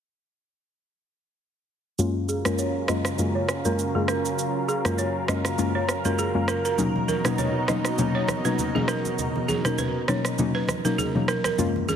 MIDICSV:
0, 0, Header, 1, 5, 480
1, 0, Start_track
1, 0, Key_signature, 6, "major"
1, 0, Tempo, 600000
1, 1589, Time_signature, 4, 2, 24, 8
1, 9567, End_track
2, 0, Start_track
2, 0, Title_t, "Balafon"
2, 0, Program_c, 0, 12
2, 1830, Note_on_c, 0, 68, 70
2, 1930, Note_off_c, 0, 68, 0
2, 1962, Note_on_c, 0, 70, 73
2, 2044, Note_off_c, 0, 70, 0
2, 2068, Note_on_c, 0, 73, 77
2, 2169, Note_off_c, 0, 73, 0
2, 2308, Note_on_c, 0, 75, 77
2, 2409, Note_off_c, 0, 75, 0
2, 2680, Note_on_c, 0, 73, 69
2, 2763, Note_off_c, 0, 73, 0
2, 2923, Note_on_c, 0, 70, 75
2, 3005, Note_off_c, 0, 70, 0
2, 3160, Note_on_c, 0, 68, 70
2, 3268, Note_off_c, 0, 68, 0
2, 3268, Note_on_c, 0, 70, 76
2, 3369, Note_off_c, 0, 70, 0
2, 3748, Note_on_c, 0, 68, 80
2, 3849, Note_off_c, 0, 68, 0
2, 3881, Note_on_c, 0, 70, 71
2, 3963, Note_off_c, 0, 70, 0
2, 3988, Note_on_c, 0, 73, 82
2, 4089, Note_off_c, 0, 73, 0
2, 4227, Note_on_c, 0, 75, 72
2, 4328, Note_off_c, 0, 75, 0
2, 4601, Note_on_c, 0, 73, 78
2, 4684, Note_off_c, 0, 73, 0
2, 4842, Note_on_c, 0, 70, 68
2, 4949, Note_off_c, 0, 70, 0
2, 4949, Note_on_c, 0, 68, 75
2, 5050, Note_off_c, 0, 68, 0
2, 5187, Note_on_c, 0, 70, 75
2, 5288, Note_off_c, 0, 70, 0
2, 5320, Note_on_c, 0, 70, 72
2, 5403, Note_off_c, 0, 70, 0
2, 5667, Note_on_c, 0, 70, 68
2, 5768, Note_off_c, 0, 70, 0
2, 5799, Note_on_c, 0, 71, 74
2, 5882, Note_off_c, 0, 71, 0
2, 5906, Note_on_c, 0, 73, 76
2, 6008, Note_off_c, 0, 73, 0
2, 6147, Note_on_c, 0, 75, 75
2, 6249, Note_off_c, 0, 75, 0
2, 6520, Note_on_c, 0, 73, 75
2, 6603, Note_off_c, 0, 73, 0
2, 6759, Note_on_c, 0, 71, 78
2, 6843, Note_off_c, 0, 71, 0
2, 7000, Note_on_c, 0, 68, 71
2, 7083, Note_off_c, 0, 68, 0
2, 7108, Note_on_c, 0, 70, 75
2, 7209, Note_off_c, 0, 70, 0
2, 7588, Note_on_c, 0, 68, 77
2, 7689, Note_off_c, 0, 68, 0
2, 7719, Note_on_c, 0, 70, 73
2, 7802, Note_off_c, 0, 70, 0
2, 7827, Note_on_c, 0, 71, 85
2, 7929, Note_off_c, 0, 71, 0
2, 8066, Note_on_c, 0, 73, 74
2, 8168, Note_off_c, 0, 73, 0
2, 8438, Note_on_c, 0, 71, 77
2, 8522, Note_off_c, 0, 71, 0
2, 8679, Note_on_c, 0, 70, 70
2, 8787, Note_on_c, 0, 68, 77
2, 8788, Note_off_c, 0, 70, 0
2, 8889, Note_off_c, 0, 68, 0
2, 9028, Note_on_c, 0, 70, 72
2, 9129, Note_off_c, 0, 70, 0
2, 9160, Note_on_c, 0, 70, 74
2, 9243, Note_off_c, 0, 70, 0
2, 9509, Note_on_c, 0, 68, 72
2, 9567, Note_off_c, 0, 68, 0
2, 9567, End_track
3, 0, Start_track
3, 0, Title_t, "Synth pluck"
3, 0, Program_c, 1, 84
3, 1589, Note_on_c, 1, 42, 94
3, 1589, Note_on_c, 1, 56, 85
3, 1590, Note_on_c, 1, 58, 83
3, 1592, Note_on_c, 1, 61, 85
3, 1593, Note_on_c, 1, 65, 98
3, 1929, Note_off_c, 1, 42, 0
3, 1929, Note_off_c, 1, 56, 0
3, 1930, Note_off_c, 1, 58, 0
3, 1931, Note_off_c, 1, 61, 0
3, 1931, Note_off_c, 1, 65, 0
3, 1961, Note_on_c, 1, 42, 71
3, 1961, Note_on_c, 1, 56, 68
3, 1962, Note_on_c, 1, 58, 71
3, 1964, Note_on_c, 1, 61, 69
3, 1965, Note_on_c, 1, 65, 84
3, 2105, Note_off_c, 1, 42, 0
3, 2105, Note_off_c, 1, 56, 0
3, 2106, Note_off_c, 1, 58, 0
3, 2107, Note_off_c, 1, 61, 0
3, 2108, Note_off_c, 1, 65, 0
3, 2308, Note_on_c, 1, 42, 79
3, 2310, Note_on_c, 1, 56, 68
3, 2310, Note_on_c, 1, 58, 72
3, 2312, Note_on_c, 1, 61, 70
3, 2313, Note_on_c, 1, 65, 84
3, 2470, Note_off_c, 1, 42, 0
3, 2471, Note_off_c, 1, 56, 0
3, 2471, Note_off_c, 1, 58, 0
3, 2472, Note_off_c, 1, 61, 0
3, 2473, Note_off_c, 1, 65, 0
3, 2548, Note_on_c, 1, 42, 91
3, 2548, Note_on_c, 1, 56, 81
3, 2549, Note_on_c, 1, 58, 85
3, 2550, Note_on_c, 1, 61, 84
3, 2552, Note_on_c, 1, 65, 97
3, 2710, Note_off_c, 1, 42, 0
3, 2710, Note_off_c, 1, 56, 0
3, 2711, Note_off_c, 1, 58, 0
3, 2711, Note_off_c, 1, 61, 0
3, 2712, Note_off_c, 1, 65, 0
3, 2919, Note_on_c, 1, 42, 74
3, 2921, Note_on_c, 1, 56, 67
3, 2922, Note_on_c, 1, 58, 72
3, 2923, Note_on_c, 1, 61, 67
3, 2924, Note_on_c, 1, 65, 83
3, 3064, Note_off_c, 1, 42, 0
3, 3065, Note_off_c, 1, 56, 0
3, 3066, Note_off_c, 1, 58, 0
3, 3066, Note_off_c, 1, 61, 0
3, 3067, Note_off_c, 1, 65, 0
3, 3160, Note_on_c, 1, 42, 72
3, 3162, Note_on_c, 1, 56, 69
3, 3163, Note_on_c, 1, 58, 66
3, 3163, Note_on_c, 1, 61, 66
3, 3165, Note_on_c, 1, 65, 81
3, 3305, Note_off_c, 1, 42, 0
3, 3306, Note_off_c, 1, 56, 0
3, 3306, Note_off_c, 1, 58, 0
3, 3307, Note_off_c, 1, 61, 0
3, 3307, Note_off_c, 1, 65, 0
3, 3880, Note_on_c, 1, 42, 77
3, 3881, Note_on_c, 1, 56, 70
3, 3883, Note_on_c, 1, 58, 69
3, 3884, Note_on_c, 1, 61, 66
3, 3885, Note_on_c, 1, 65, 82
3, 4025, Note_off_c, 1, 42, 0
3, 4025, Note_off_c, 1, 56, 0
3, 4026, Note_off_c, 1, 58, 0
3, 4027, Note_off_c, 1, 61, 0
3, 4027, Note_off_c, 1, 65, 0
3, 4226, Note_on_c, 1, 42, 78
3, 4228, Note_on_c, 1, 56, 68
3, 4229, Note_on_c, 1, 58, 70
3, 4232, Note_on_c, 1, 61, 70
3, 4232, Note_on_c, 1, 65, 83
3, 4389, Note_off_c, 1, 42, 0
3, 4390, Note_off_c, 1, 56, 0
3, 4391, Note_off_c, 1, 58, 0
3, 4392, Note_off_c, 1, 61, 0
3, 4392, Note_off_c, 1, 65, 0
3, 4466, Note_on_c, 1, 42, 94
3, 4467, Note_on_c, 1, 56, 86
3, 4468, Note_on_c, 1, 58, 81
3, 4470, Note_on_c, 1, 61, 87
3, 4471, Note_on_c, 1, 65, 103
3, 4629, Note_off_c, 1, 42, 0
3, 4630, Note_off_c, 1, 56, 0
3, 4630, Note_off_c, 1, 58, 0
3, 4631, Note_off_c, 1, 61, 0
3, 4632, Note_off_c, 1, 65, 0
3, 4839, Note_on_c, 1, 42, 75
3, 4840, Note_on_c, 1, 56, 67
3, 4841, Note_on_c, 1, 58, 67
3, 4842, Note_on_c, 1, 61, 70
3, 4844, Note_on_c, 1, 65, 83
3, 4984, Note_off_c, 1, 42, 0
3, 4985, Note_off_c, 1, 56, 0
3, 4986, Note_off_c, 1, 58, 0
3, 4986, Note_off_c, 1, 61, 0
3, 4987, Note_off_c, 1, 65, 0
3, 5076, Note_on_c, 1, 42, 74
3, 5077, Note_on_c, 1, 56, 65
3, 5078, Note_on_c, 1, 58, 67
3, 5079, Note_on_c, 1, 61, 64
3, 5080, Note_on_c, 1, 65, 78
3, 5223, Note_off_c, 1, 42, 0
3, 5223, Note_off_c, 1, 56, 0
3, 5224, Note_off_c, 1, 58, 0
3, 5224, Note_off_c, 1, 61, 0
3, 5225, Note_off_c, 1, 65, 0
3, 5424, Note_on_c, 1, 47, 90
3, 5425, Note_on_c, 1, 54, 87
3, 5426, Note_on_c, 1, 58, 86
3, 5427, Note_on_c, 1, 61, 86
3, 5429, Note_on_c, 1, 63, 101
3, 5767, Note_off_c, 1, 47, 0
3, 5768, Note_off_c, 1, 54, 0
3, 5768, Note_off_c, 1, 58, 0
3, 5768, Note_off_c, 1, 61, 0
3, 5769, Note_off_c, 1, 63, 0
3, 5797, Note_on_c, 1, 47, 76
3, 5798, Note_on_c, 1, 54, 68
3, 5799, Note_on_c, 1, 58, 69
3, 5800, Note_on_c, 1, 61, 66
3, 5801, Note_on_c, 1, 63, 83
3, 5943, Note_off_c, 1, 47, 0
3, 5944, Note_off_c, 1, 54, 0
3, 5944, Note_off_c, 1, 58, 0
3, 5945, Note_off_c, 1, 61, 0
3, 5945, Note_off_c, 1, 63, 0
3, 6145, Note_on_c, 1, 47, 77
3, 6147, Note_on_c, 1, 54, 74
3, 6149, Note_on_c, 1, 58, 71
3, 6149, Note_on_c, 1, 61, 72
3, 6150, Note_on_c, 1, 63, 85
3, 6309, Note_off_c, 1, 47, 0
3, 6310, Note_off_c, 1, 54, 0
3, 6310, Note_off_c, 1, 58, 0
3, 6311, Note_off_c, 1, 61, 0
3, 6311, Note_off_c, 1, 63, 0
3, 6385, Note_on_c, 1, 47, 95
3, 6387, Note_on_c, 1, 54, 82
3, 6388, Note_on_c, 1, 58, 85
3, 6389, Note_on_c, 1, 61, 85
3, 6390, Note_on_c, 1, 63, 103
3, 6549, Note_off_c, 1, 47, 0
3, 6550, Note_off_c, 1, 54, 0
3, 6550, Note_off_c, 1, 58, 0
3, 6551, Note_off_c, 1, 61, 0
3, 6551, Note_off_c, 1, 63, 0
3, 6758, Note_on_c, 1, 47, 73
3, 6761, Note_on_c, 1, 54, 69
3, 6761, Note_on_c, 1, 58, 69
3, 6762, Note_on_c, 1, 61, 67
3, 6764, Note_on_c, 1, 63, 84
3, 6904, Note_off_c, 1, 47, 0
3, 6905, Note_off_c, 1, 54, 0
3, 6905, Note_off_c, 1, 58, 0
3, 6906, Note_off_c, 1, 61, 0
3, 6907, Note_off_c, 1, 63, 0
3, 6997, Note_on_c, 1, 47, 72
3, 6999, Note_on_c, 1, 54, 68
3, 7000, Note_on_c, 1, 58, 69
3, 7002, Note_on_c, 1, 61, 67
3, 7003, Note_on_c, 1, 63, 79
3, 7144, Note_off_c, 1, 47, 0
3, 7144, Note_off_c, 1, 54, 0
3, 7145, Note_off_c, 1, 58, 0
3, 7146, Note_off_c, 1, 61, 0
3, 7146, Note_off_c, 1, 63, 0
3, 7718, Note_on_c, 1, 47, 73
3, 7720, Note_on_c, 1, 54, 68
3, 7721, Note_on_c, 1, 58, 65
3, 7721, Note_on_c, 1, 61, 68
3, 7722, Note_on_c, 1, 63, 84
3, 7864, Note_off_c, 1, 47, 0
3, 7865, Note_off_c, 1, 54, 0
3, 7865, Note_off_c, 1, 58, 0
3, 7866, Note_off_c, 1, 61, 0
3, 7866, Note_off_c, 1, 63, 0
3, 8068, Note_on_c, 1, 47, 76
3, 8069, Note_on_c, 1, 54, 68
3, 8070, Note_on_c, 1, 58, 69
3, 8071, Note_on_c, 1, 61, 70
3, 8073, Note_on_c, 1, 63, 88
3, 8230, Note_off_c, 1, 47, 0
3, 8231, Note_off_c, 1, 54, 0
3, 8231, Note_off_c, 1, 58, 0
3, 8232, Note_off_c, 1, 61, 0
3, 8233, Note_off_c, 1, 63, 0
3, 8307, Note_on_c, 1, 54, 84
3, 8308, Note_on_c, 1, 47, 91
3, 8310, Note_on_c, 1, 58, 90
3, 8311, Note_on_c, 1, 61, 85
3, 8312, Note_on_c, 1, 63, 103
3, 8470, Note_off_c, 1, 47, 0
3, 8470, Note_off_c, 1, 54, 0
3, 8471, Note_off_c, 1, 58, 0
3, 8472, Note_off_c, 1, 61, 0
3, 8472, Note_off_c, 1, 63, 0
3, 8677, Note_on_c, 1, 47, 75
3, 8678, Note_on_c, 1, 54, 68
3, 8680, Note_on_c, 1, 58, 67
3, 8681, Note_on_c, 1, 61, 72
3, 8682, Note_on_c, 1, 63, 85
3, 8823, Note_off_c, 1, 47, 0
3, 8824, Note_off_c, 1, 54, 0
3, 8825, Note_off_c, 1, 58, 0
3, 8825, Note_off_c, 1, 61, 0
3, 8826, Note_off_c, 1, 63, 0
3, 8918, Note_on_c, 1, 47, 73
3, 8919, Note_on_c, 1, 54, 69
3, 8921, Note_on_c, 1, 58, 66
3, 8922, Note_on_c, 1, 61, 64
3, 8923, Note_on_c, 1, 63, 81
3, 9064, Note_off_c, 1, 47, 0
3, 9064, Note_off_c, 1, 54, 0
3, 9065, Note_off_c, 1, 58, 0
3, 9066, Note_off_c, 1, 61, 0
3, 9066, Note_off_c, 1, 63, 0
3, 9265, Note_on_c, 1, 42, 90
3, 9266, Note_on_c, 1, 56, 86
3, 9268, Note_on_c, 1, 58, 87
3, 9269, Note_on_c, 1, 61, 80
3, 9270, Note_on_c, 1, 65, 100
3, 9567, Note_off_c, 1, 42, 0
3, 9567, Note_off_c, 1, 56, 0
3, 9567, Note_off_c, 1, 58, 0
3, 9567, Note_off_c, 1, 61, 0
3, 9567, Note_off_c, 1, 65, 0
3, 9567, End_track
4, 0, Start_track
4, 0, Title_t, "Analog synth pad"
4, 0, Program_c, 2, 89
4, 1589, Note_on_c, 2, 49, 82
4, 1590, Note_on_c, 2, 54, 73
4, 1590, Note_on_c, 2, 70, 88
4, 1591, Note_on_c, 2, 65, 71
4, 5397, Note_off_c, 2, 49, 0
4, 5397, Note_off_c, 2, 54, 0
4, 5398, Note_off_c, 2, 65, 0
4, 5428, Note_on_c, 2, 47, 78
4, 5428, Note_on_c, 2, 54, 73
4, 5428, Note_on_c, 2, 63, 73
4, 9236, Note_off_c, 2, 47, 0
4, 9236, Note_off_c, 2, 54, 0
4, 9237, Note_off_c, 2, 63, 0
4, 9238, Note_off_c, 2, 70, 0
4, 9567, End_track
5, 0, Start_track
5, 0, Title_t, "Drums"
5, 1590, Note_on_c, 9, 82, 74
5, 1670, Note_off_c, 9, 82, 0
5, 1831, Note_on_c, 9, 82, 50
5, 1911, Note_off_c, 9, 82, 0
5, 1961, Note_on_c, 9, 37, 85
5, 1965, Note_on_c, 9, 82, 79
5, 2041, Note_off_c, 9, 37, 0
5, 2045, Note_off_c, 9, 82, 0
5, 2067, Note_on_c, 9, 82, 69
5, 2147, Note_off_c, 9, 82, 0
5, 2305, Note_on_c, 9, 37, 97
5, 2311, Note_on_c, 9, 82, 57
5, 2385, Note_off_c, 9, 37, 0
5, 2391, Note_off_c, 9, 82, 0
5, 2438, Note_on_c, 9, 37, 81
5, 2444, Note_on_c, 9, 82, 70
5, 2518, Note_off_c, 9, 37, 0
5, 2524, Note_off_c, 9, 82, 0
5, 2548, Note_on_c, 9, 82, 70
5, 2628, Note_off_c, 9, 82, 0
5, 2788, Note_on_c, 9, 37, 89
5, 2792, Note_on_c, 9, 82, 55
5, 2868, Note_off_c, 9, 37, 0
5, 2872, Note_off_c, 9, 82, 0
5, 2920, Note_on_c, 9, 82, 70
5, 3000, Note_off_c, 9, 82, 0
5, 3031, Note_on_c, 9, 82, 68
5, 3111, Note_off_c, 9, 82, 0
5, 3265, Note_on_c, 9, 37, 87
5, 3270, Note_on_c, 9, 82, 49
5, 3345, Note_off_c, 9, 37, 0
5, 3350, Note_off_c, 9, 82, 0
5, 3402, Note_on_c, 9, 82, 65
5, 3482, Note_off_c, 9, 82, 0
5, 3509, Note_on_c, 9, 82, 75
5, 3589, Note_off_c, 9, 82, 0
5, 3750, Note_on_c, 9, 82, 52
5, 3830, Note_off_c, 9, 82, 0
5, 3880, Note_on_c, 9, 37, 84
5, 3884, Note_on_c, 9, 82, 73
5, 3960, Note_off_c, 9, 37, 0
5, 3964, Note_off_c, 9, 82, 0
5, 3987, Note_on_c, 9, 82, 67
5, 4067, Note_off_c, 9, 82, 0
5, 4227, Note_on_c, 9, 37, 97
5, 4232, Note_on_c, 9, 82, 55
5, 4307, Note_off_c, 9, 37, 0
5, 4312, Note_off_c, 9, 82, 0
5, 4357, Note_on_c, 9, 37, 78
5, 4363, Note_on_c, 9, 82, 68
5, 4437, Note_off_c, 9, 37, 0
5, 4443, Note_off_c, 9, 82, 0
5, 4467, Note_on_c, 9, 82, 70
5, 4547, Note_off_c, 9, 82, 0
5, 4708, Note_on_c, 9, 37, 88
5, 4712, Note_on_c, 9, 82, 55
5, 4788, Note_off_c, 9, 37, 0
5, 4792, Note_off_c, 9, 82, 0
5, 4839, Note_on_c, 9, 82, 70
5, 4919, Note_off_c, 9, 82, 0
5, 4950, Note_on_c, 9, 82, 68
5, 5030, Note_off_c, 9, 82, 0
5, 5183, Note_on_c, 9, 37, 88
5, 5188, Note_on_c, 9, 82, 49
5, 5263, Note_off_c, 9, 37, 0
5, 5268, Note_off_c, 9, 82, 0
5, 5321, Note_on_c, 9, 82, 63
5, 5401, Note_off_c, 9, 82, 0
5, 5428, Note_on_c, 9, 64, 68
5, 5428, Note_on_c, 9, 82, 70
5, 5508, Note_off_c, 9, 64, 0
5, 5508, Note_off_c, 9, 82, 0
5, 5566, Note_on_c, 9, 63, 67
5, 5646, Note_off_c, 9, 63, 0
5, 5669, Note_on_c, 9, 82, 50
5, 5670, Note_on_c, 9, 63, 75
5, 5749, Note_off_c, 9, 82, 0
5, 5750, Note_off_c, 9, 63, 0
5, 5795, Note_on_c, 9, 63, 71
5, 5798, Note_on_c, 9, 37, 87
5, 5802, Note_on_c, 9, 82, 78
5, 5875, Note_off_c, 9, 63, 0
5, 5878, Note_off_c, 9, 37, 0
5, 5882, Note_off_c, 9, 82, 0
5, 5906, Note_on_c, 9, 82, 69
5, 5907, Note_on_c, 9, 64, 72
5, 5986, Note_off_c, 9, 82, 0
5, 5987, Note_off_c, 9, 64, 0
5, 6145, Note_on_c, 9, 37, 99
5, 6150, Note_on_c, 9, 82, 56
5, 6152, Note_on_c, 9, 63, 67
5, 6225, Note_off_c, 9, 37, 0
5, 6230, Note_off_c, 9, 82, 0
5, 6232, Note_off_c, 9, 63, 0
5, 6277, Note_on_c, 9, 37, 82
5, 6283, Note_on_c, 9, 82, 70
5, 6357, Note_off_c, 9, 37, 0
5, 6363, Note_off_c, 9, 82, 0
5, 6386, Note_on_c, 9, 82, 70
5, 6394, Note_on_c, 9, 64, 70
5, 6466, Note_off_c, 9, 82, 0
5, 6474, Note_off_c, 9, 64, 0
5, 6622, Note_on_c, 9, 63, 70
5, 6628, Note_on_c, 9, 37, 85
5, 6631, Note_on_c, 9, 82, 56
5, 6702, Note_off_c, 9, 63, 0
5, 6708, Note_off_c, 9, 37, 0
5, 6711, Note_off_c, 9, 82, 0
5, 6760, Note_on_c, 9, 82, 71
5, 6840, Note_off_c, 9, 82, 0
5, 6866, Note_on_c, 9, 64, 72
5, 6870, Note_on_c, 9, 82, 65
5, 6946, Note_off_c, 9, 64, 0
5, 6950, Note_off_c, 9, 82, 0
5, 7006, Note_on_c, 9, 63, 83
5, 7086, Note_off_c, 9, 63, 0
5, 7103, Note_on_c, 9, 37, 90
5, 7108, Note_on_c, 9, 82, 50
5, 7183, Note_off_c, 9, 37, 0
5, 7188, Note_off_c, 9, 82, 0
5, 7241, Note_on_c, 9, 63, 52
5, 7242, Note_on_c, 9, 82, 63
5, 7321, Note_off_c, 9, 63, 0
5, 7322, Note_off_c, 9, 82, 0
5, 7347, Note_on_c, 9, 64, 68
5, 7348, Note_on_c, 9, 82, 74
5, 7427, Note_off_c, 9, 64, 0
5, 7428, Note_off_c, 9, 82, 0
5, 7485, Note_on_c, 9, 63, 68
5, 7565, Note_off_c, 9, 63, 0
5, 7590, Note_on_c, 9, 82, 55
5, 7592, Note_on_c, 9, 63, 76
5, 7670, Note_off_c, 9, 82, 0
5, 7672, Note_off_c, 9, 63, 0
5, 7716, Note_on_c, 9, 63, 69
5, 7719, Note_on_c, 9, 37, 91
5, 7723, Note_on_c, 9, 82, 79
5, 7796, Note_off_c, 9, 63, 0
5, 7799, Note_off_c, 9, 37, 0
5, 7803, Note_off_c, 9, 82, 0
5, 7825, Note_on_c, 9, 82, 67
5, 7827, Note_on_c, 9, 64, 75
5, 7905, Note_off_c, 9, 82, 0
5, 7907, Note_off_c, 9, 64, 0
5, 8065, Note_on_c, 9, 37, 97
5, 8071, Note_on_c, 9, 82, 58
5, 8072, Note_on_c, 9, 63, 68
5, 8145, Note_off_c, 9, 37, 0
5, 8151, Note_off_c, 9, 82, 0
5, 8152, Note_off_c, 9, 63, 0
5, 8197, Note_on_c, 9, 37, 79
5, 8203, Note_on_c, 9, 82, 73
5, 8277, Note_off_c, 9, 37, 0
5, 8283, Note_off_c, 9, 82, 0
5, 8308, Note_on_c, 9, 82, 71
5, 8314, Note_on_c, 9, 64, 73
5, 8388, Note_off_c, 9, 82, 0
5, 8394, Note_off_c, 9, 64, 0
5, 8542, Note_on_c, 9, 63, 73
5, 8548, Note_on_c, 9, 37, 84
5, 8552, Note_on_c, 9, 82, 55
5, 8622, Note_off_c, 9, 63, 0
5, 8628, Note_off_c, 9, 37, 0
5, 8632, Note_off_c, 9, 82, 0
5, 8680, Note_on_c, 9, 82, 68
5, 8760, Note_off_c, 9, 82, 0
5, 8784, Note_on_c, 9, 64, 78
5, 8791, Note_on_c, 9, 82, 65
5, 8864, Note_off_c, 9, 64, 0
5, 8871, Note_off_c, 9, 82, 0
5, 8927, Note_on_c, 9, 63, 80
5, 9007, Note_off_c, 9, 63, 0
5, 9025, Note_on_c, 9, 37, 84
5, 9030, Note_on_c, 9, 82, 48
5, 9105, Note_off_c, 9, 37, 0
5, 9110, Note_off_c, 9, 82, 0
5, 9154, Note_on_c, 9, 37, 84
5, 9161, Note_on_c, 9, 63, 54
5, 9161, Note_on_c, 9, 82, 65
5, 9234, Note_off_c, 9, 37, 0
5, 9241, Note_off_c, 9, 63, 0
5, 9241, Note_off_c, 9, 82, 0
5, 9268, Note_on_c, 9, 64, 67
5, 9269, Note_on_c, 9, 82, 73
5, 9348, Note_off_c, 9, 64, 0
5, 9349, Note_off_c, 9, 82, 0
5, 9408, Note_on_c, 9, 63, 64
5, 9488, Note_off_c, 9, 63, 0
5, 9509, Note_on_c, 9, 82, 52
5, 9514, Note_on_c, 9, 63, 75
5, 9567, Note_off_c, 9, 63, 0
5, 9567, Note_off_c, 9, 82, 0
5, 9567, End_track
0, 0, End_of_file